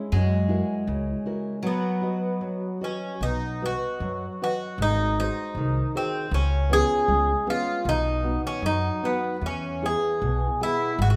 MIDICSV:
0, 0, Header, 1, 5, 480
1, 0, Start_track
1, 0, Key_signature, 5, "major"
1, 0, Tempo, 751880
1, 75, Time_signature, 2, 2, 24, 8
1, 1036, Tempo, 794702
1, 2476, Tempo, 768246
1, 4876, Tempo, 783290
1, 6907, End_track
2, 0, Start_track
2, 0, Title_t, "Nylon-string guitar"
2, 0, Program_c, 0, 24
2, 81, Note_on_c, 0, 54, 59
2, 311, Note_on_c, 0, 64, 49
2, 315, Note_on_c, 0, 66, 42
2, 321, Note_on_c, 0, 70, 50
2, 540, Note_off_c, 0, 54, 0
2, 560, Note_on_c, 0, 49, 69
2, 697, Note_off_c, 0, 64, 0
2, 700, Note_off_c, 0, 66, 0
2, 701, Note_off_c, 0, 70, 0
2, 801, Note_on_c, 0, 64, 42
2, 806, Note_on_c, 0, 66, 45
2, 810, Note_on_c, 0, 70, 51
2, 992, Note_off_c, 0, 64, 0
2, 995, Note_off_c, 0, 66, 0
2, 997, Note_off_c, 0, 70, 0
2, 1026, Note_off_c, 0, 49, 0
2, 1041, Note_on_c, 0, 59, 54
2, 1274, Note_on_c, 0, 66, 39
2, 1279, Note_on_c, 0, 71, 37
2, 1283, Note_on_c, 0, 75, 46
2, 1496, Note_off_c, 0, 59, 0
2, 1511, Note_on_c, 0, 54, 56
2, 1657, Note_off_c, 0, 66, 0
2, 1661, Note_off_c, 0, 71, 0
2, 1663, Note_off_c, 0, 75, 0
2, 1754, Note_on_c, 0, 66, 44
2, 1756, Note_on_c, 0, 71, 36
2, 1763, Note_on_c, 0, 75, 46
2, 1948, Note_off_c, 0, 66, 0
2, 1948, Note_off_c, 0, 71, 0
2, 1953, Note_off_c, 0, 75, 0
2, 1981, Note_off_c, 0, 54, 0
2, 2001, Note_on_c, 0, 59, 59
2, 2243, Note_on_c, 0, 66, 46
2, 2246, Note_on_c, 0, 71, 42
2, 2249, Note_on_c, 0, 75, 52
2, 2465, Note_off_c, 0, 59, 0
2, 2484, Note_on_c, 0, 54, 64
2, 2627, Note_off_c, 0, 66, 0
2, 2629, Note_off_c, 0, 71, 0
2, 2629, Note_off_c, 0, 75, 0
2, 2733, Note_on_c, 0, 66, 46
2, 2735, Note_on_c, 0, 71, 44
2, 2737, Note_on_c, 0, 75, 53
2, 2922, Note_off_c, 0, 66, 0
2, 2923, Note_off_c, 0, 71, 0
2, 2923, Note_off_c, 0, 75, 0
2, 2952, Note_off_c, 0, 54, 0
2, 2974, Note_on_c, 0, 56, 63
2, 3219, Note_on_c, 0, 66, 45
2, 3220, Note_on_c, 0, 68, 41
2, 3223, Note_on_c, 0, 72, 56
2, 3433, Note_off_c, 0, 56, 0
2, 3456, Note_on_c, 0, 51, 72
2, 3596, Note_off_c, 0, 66, 0
2, 3596, Note_off_c, 0, 68, 0
2, 3597, Note_off_c, 0, 72, 0
2, 3690, Note_on_c, 0, 66, 50
2, 3693, Note_on_c, 0, 68, 44
2, 3695, Note_on_c, 0, 72, 54
2, 3880, Note_off_c, 0, 66, 0
2, 3880, Note_off_c, 0, 68, 0
2, 3882, Note_off_c, 0, 72, 0
2, 3915, Note_off_c, 0, 51, 0
2, 3922, Note_on_c, 0, 49, 65
2, 4156, Note_on_c, 0, 59, 48
2, 4163, Note_on_c, 0, 61, 48
2, 4165, Note_on_c, 0, 65, 53
2, 4386, Note_off_c, 0, 49, 0
2, 4397, Note_on_c, 0, 56, 66
2, 4540, Note_off_c, 0, 59, 0
2, 4544, Note_off_c, 0, 61, 0
2, 4544, Note_off_c, 0, 65, 0
2, 4638, Note_on_c, 0, 59, 56
2, 4641, Note_on_c, 0, 61, 46
2, 4641, Note_on_c, 0, 65, 58
2, 4828, Note_off_c, 0, 59, 0
2, 4830, Note_off_c, 0, 61, 0
2, 4830, Note_off_c, 0, 65, 0
2, 4860, Note_off_c, 0, 56, 0
2, 4872, Note_on_c, 0, 47, 65
2, 5110, Note_on_c, 0, 59, 47
2, 5114, Note_on_c, 0, 63, 45
2, 5117, Note_on_c, 0, 66, 49
2, 5336, Note_off_c, 0, 47, 0
2, 5352, Note_on_c, 0, 54, 66
2, 5500, Note_off_c, 0, 59, 0
2, 5501, Note_off_c, 0, 63, 0
2, 5501, Note_off_c, 0, 66, 0
2, 5600, Note_on_c, 0, 59, 43
2, 5603, Note_on_c, 0, 63, 42
2, 5605, Note_on_c, 0, 66, 53
2, 5795, Note_off_c, 0, 59, 0
2, 5796, Note_off_c, 0, 63, 0
2, 5798, Note_off_c, 0, 66, 0
2, 5827, Note_off_c, 0, 54, 0
2, 5842, Note_on_c, 0, 52, 62
2, 6084, Note_on_c, 0, 59, 44
2, 6087, Note_on_c, 0, 64, 43
2, 6091, Note_on_c, 0, 68, 52
2, 6314, Note_off_c, 0, 52, 0
2, 6334, Note_on_c, 0, 47, 67
2, 6469, Note_off_c, 0, 59, 0
2, 6469, Note_off_c, 0, 64, 0
2, 6473, Note_off_c, 0, 68, 0
2, 6563, Note_on_c, 0, 59, 46
2, 6567, Note_on_c, 0, 64, 45
2, 6570, Note_on_c, 0, 68, 59
2, 6751, Note_off_c, 0, 59, 0
2, 6754, Note_off_c, 0, 64, 0
2, 6755, Note_off_c, 0, 68, 0
2, 6788, Note_off_c, 0, 47, 0
2, 6805, Note_on_c, 0, 56, 58
2, 6907, Note_off_c, 0, 56, 0
2, 6907, End_track
3, 0, Start_track
3, 0, Title_t, "Bouzouki"
3, 0, Program_c, 1, 25
3, 0, Note_on_c, 1, 64, 84
3, 1063, Note_on_c, 1, 59, 62
3, 1100, Note_off_c, 1, 64, 0
3, 1739, Note_off_c, 1, 59, 0
3, 1772, Note_on_c, 1, 61, 67
3, 2005, Note_on_c, 1, 63, 89
3, 2012, Note_off_c, 1, 61, 0
3, 2249, Note_off_c, 1, 63, 0
3, 2264, Note_on_c, 1, 66, 90
3, 2736, Note_off_c, 1, 66, 0
3, 2744, Note_on_c, 1, 66, 86
3, 2958, Note_off_c, 1, 66, 0
3, 2985, Note_on_c, 1, 63, 96
3, 3212, Note_off_c, 1, 63, 0
3, 3220, Note_on_c, 1, 63, 82
3, 3665, Note_off_c, 1, 63, 0
3, 3702, Note_on_c, 1, 60, 77
3, 3933, Note_off_c, 1, 60, 0
3, 3936, Note_on_c, 1, 61, 90
3, 4176, Note_off_c, 1, 61, 0
3, 4178, Note_on_c, 1, 68, 102
3, 4657, Note_off_c, 1, 68, 0
3, 4659, Note_on_c, 1, 65, 94
3, 4893, Note_off_c, 1, 65, 0
3, 4900, Note_on_c, 1, 63, 100
3, 5219, Note_off_c, 1, 63, 0
3, 5255, Note_on_c, 1, 61, 86
3, 5368, Note_off_c, 1, 61, 0
3, 5373, Note_on_c, 1, 63, 94
3, 5613, Note_on_c, 1, 59, 74
3, 5614, Note_off_c, 1, 63, 0
3, 5858, Note_off_c, 1, 59, 0
3, 5864, Note_on_c, 1, 61, 78
3, 6105, Note_off_c, 1, 61, 0
3, 6107, Note_on_c, 1, 68, 84
3, 6579, Note_off_c, 1, 68, 0
3, 6581, Note_on_c, 1, 64, 90
3, 6814, Note_off_c, 1, 64, 0
3, 6818, Note_on_c, 1, 66, 92
3, 6854, Note_off_c, 1, 66, 0
3, 6869, Note_on_c, 1, 66, 69
3, 6901, Note_off_c, 1, 66, 0
3, 6907, End_track
4, 0, Start_track
4, 0, Title_t, "Twelve-string acoustic guitar"
4, 0, Program_c, 2, 25
4, 0, Note_on_c, 2, 56, 85
4, 69, Note_off_c, 2, 56, 0
4, 77, Note_on_c, 2, 56, 94
4, 1038, Note_on_c, 2, 54, 68
4, 1064, Note_off_c, 2, 56, 0
4, 1727, Note_off_c, 2, 54, 0
4, 6907, End_track
5, 0, Start_track
5, 0, Title_t, "Upright bass"
5, 0, Program_c, 3, 32
5, 77, Note_on_c, 3, 42, 96
5, 386, Note_off_c, 3, 42, 0
5, 558, Note_on_c, 3, 37, 87
5, 713, Note_off_c, 3, 37, 0
5, 1993, Note_on_c, 3, 35, 85
5, 2307, Note_off_c, 3, 35, 0
5, 2473, Note_on_c, 3, 42, 79
5, 2633, Note_off_c, 3, 42, 0
5, 2959, Note_on_c, 3, 32, 88
5, 3272, Note_off_c, 3, 32, 0
5, 3439, Note_on_c, 3, 36, 81
5, 3595, Note_off_c, 3, 36, 0
5, 3917, Note_on_c, 3, 37, 100
5, 4230, Note_off_c, 3, 37, 0
5, 4397, Note_on_c, 3, 37, 83
5, 4553, Note_off_c, 3, 37, 0
5, 4878, Note_on_c, 3, 35, 100
5, 5187, Note_off_c, 3, 35, 0
5, 5351, Note_on_c, 3, 42, 80
5, 5510, Note_off_c, 3, 42, 0
5, 5835, Note_on_c, 3, 40, 82
5, 6153, Note_off_c, 3, 40, 0
5, 6327, Note_on_c, 3, 35, 90
5, 6482, Note_off_c, 3, 35, 0
5, 6798, Note_on_c, 3, 32, 100
5, 6907, Note_off_c, 3, 32, 0
5, 6907, End_track
0, 0, End_of_file